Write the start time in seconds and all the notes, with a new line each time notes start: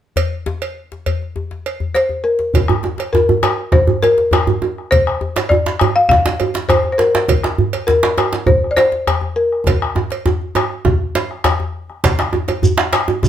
0.16 cowbell, djembe slap, djembe bass
0.46 djembe slap, djembe tone
0.62 cowbell
0.92 djembe slap
1.06 cowbell, djembe slap, djembe bass
1.22 djembe slap
1.36 djembe tone
1.51 djembe slap
1.66 cowbell
1.80 djembe slap, djembe bass
1.95 C5, cowbell, djembe slap
2.09 djembe tone
2.24 A#4
2.39 djembe slap
2.54 bombo low, cowbell, djembe tone, djembe bass
2.68 bombo rim, djembe bass
2.83 djembe slap, djembe tone
2.98 bombo rim, cowbell, djembe slap
3.13 A#4, djembe slap, djembe tone, djembe bass
3.29 djembe bass
3.43 bombo rim, cowbell, djembe tone
3.58 djembe slap
3.72 C5, bombo low, djembe slap, djembe tone, djembe bass
3.87 bombo rim, djembe bass
4.02 A#4, bombo rim, cowbell, djembe slap, djembe tone
4.18 djembe slap
4.31 bombo rim, cowbell, djembe tone, djembe bass
4.47 bombo rim, djembe slap, djembe tone, djembe bass
4.62 djembe tone
4.78 bombo rim
4.91 C5, bombo low, cowbell, djembe bass
5.07 bombo rim
5.21 djembe slap, djembe tone
5.36 bombo rim, cowbell, djembe slap
5.49 D5, djembe slap, djembe tone, djembe bass
5.66 djembe slap
5.79 bombo rim, cowbell, djembe bass
5.95 F5, djembe slap
6.09 F5, bombo low, djembe slap, djembe tone, djembe bass
6.11 djembe slap
6.26 bombo rim, djembe slap
6.39 bombo rim, cowbell, djembe slap, djembe tone
6.54 djembe slap
6.69 C5, bombo rim, cowbell, djembe bass
6.83 bombo rim, djembe slap, djembe tone
6.92 C5
6.98 A#4, djembe slap
7.15 bombo rim, djembe slap
7.28 bombo low, cowbell, djembe tone, djembe bass
7.43 bombo rim, djembe slap
7.58 djembe bass
7.73 bombo rim, cowbell, djembe slap
7.87 A#4, djembe slap, djembe bass
8.03 djembe slap
8.18 bombo rim, cowbell, djembe tone
8.33 djembe slap
8.46 C5, bombo low, djembe slap, djembe tone, djembe bass
8.48 djembe bass
8.64 bombo rim
8.71 D5
8.76 C5, cowbell, djembe slap
8.79 bombo rim, djembe slap
8.92 djembe slap
9.07 bombo rim, cowbell, djembe bass
9.21 bombo rim, djembe slap, djembe tone
9.36 A#4, djembe slap
9.52 bombo rim
9.66 bombo low, cowbell, djembe slap, djembe tone, djembe bass
9.82 bombo rim
9.95 djembe slap, djembe tone
10.10 cowbell, djembe slap
10.26 bombo rim, djembe slap, djembe tone, djembe bass
10.42 djembe slap
10.55 bombo rim, cowbell, djembe tone
10.85 bombo low, djembe tone, djembe bass
11.15 cowbell, djembe slap
11.31 bombo rim
11.44 bombo rim, cowbell, djembe slap, djembe bass
11.59 bombo rim, djembe slap, djembe tone
11.90 bombo rim, djembe slap
12.04 bombo low, cowbell, djembe slap, djembe bass, shekere
12.19 bombo rim, djembe slap
12.33 djembe slap, djembe tone
12.48 bombo rim, cowbell, djembe slap, djembe tone
12.62 djembe slap, djembe bass, shekere
12.78 djembe slap
12.93 bombo rim, cowbell, djembe slap
13.08 djembe slap, djembe tone
13.23 bombo low, djembe slap, djembe tone, djembe bass, shekere